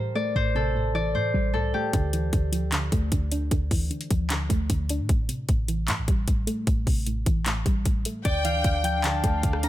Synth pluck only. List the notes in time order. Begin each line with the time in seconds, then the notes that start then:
Already playing: A2 E3 G3
0.15 A3
0.36 A2
0.55 C3
0.75 A2
0.94 E3
1.15 A2
1.34 G3
1.54 A2
1.74 A3
1.93 D3
2.13 E3
2.33 D3
2.52 F3
2.72 D3
2.92 A3
3.12 D3
3.32 D4
3.52 D3
3.71 E3
3.90 D3
4.10 F3
4.30 D3
4.49 A3
4.70 D3
4.90 D4
5.10 A2
5.28 C3
5.49 A2
5.68 E3
5.88 A2
6.09 G3
6.28 A2
6.47 A3
6.67 A2
6.87 C3
7.07 A2
7.26 E3
7.46 A2
7.65 G3
7.85 A2
8.06 A3
8.25 D3
8.45 E3
8.65 D3
8.84 F3
9.04 D3
9.24 A3
9.44 D3
9.63 D4